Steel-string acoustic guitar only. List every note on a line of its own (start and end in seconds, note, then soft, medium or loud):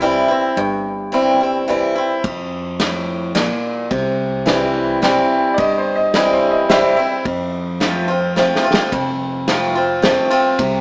0.01 0.28 E3 medium
0.01 0.29 G3 medium
0.01 0.29 C4 medium
0.01 0.27 E4 medium
0.28 0.57 C4 soft
0.28 0.56 E4 soft
0.57 1.63 G2 medium
1.12 1.39 E3 soft
1.12 1.40 G3 medium
1.12 1.40 C4 medium
1.12 1.39 E4 medium
1.41 1.68 C4 soft
1.41 1.67 E4 soft
1.68 1.95 E3 medium
1.68 1.95 G3 medium
1.68 1.96 C4 medium
1.68 1.94 E4 medium
1.95 2.24 C4 soft
1.95 2.23 E4 soft
2.24 3.30 F2 medium
2.80 3.33 A2 medium
3.35 3.88 A#2 medium
3.91 4.97 C3 medium
4.46 4.99 E3 medium
4.46 5.00 G3 medium
4.46 5.00 C4 medium
4.46 5.00 E4 medium
5.02 5.55 E3 medium
5.02 5.56 G3 medium
5.02 5.56 C4 medium
5.02 5.56 E4 medium
5.58 6.64 G2 medium
6.14 6.67 E3 medium
6.14 6.67 G3 medium
6.14 6.68 C4 medium
6.14 6.68 E4 medium
6.69 6.96 E3 medium
6.69 6.97 G3 medium
6.69 6.97 C4 medium
6.69 6.95 E4 medium
6.97 7.25 C4 soft
6.97 7.24 E4 medium
7.26 8.31 F2 medium
7.80 8.07 F3 medium
7.80 8.08 A3 medium
7.80 8.08 C4 medium
7.80 8.07 F4 medium
8.08 8.36 C4 soft
8.08 8.35 F4 medium
8.36 8.63 F3 medium
8.36 8.64 A3 medium
8.36 8.64 C4 medium
8.36 8.63 F4 medium
8.64 8.92 C4 soft
8.64 8.91 F4 medium
8.93 9.98 F2 medium
9.48 9.75 F3 medium
9.48 9.75 A3 medium
9.48 9.76 C4 medium
9.48 9.74 F4 medium
9.75 10.03 C4 soft
9.75 10.02 F4 medium
10.02 10.30 F3 medium
10.02 10.30 A3 medium
10.02 10.31 C4 medium
10.02 10.29 F4 medium
10.30 10.59 C4 soft
10.30 10.58 F4 medium
10.59 10.81 C3 medium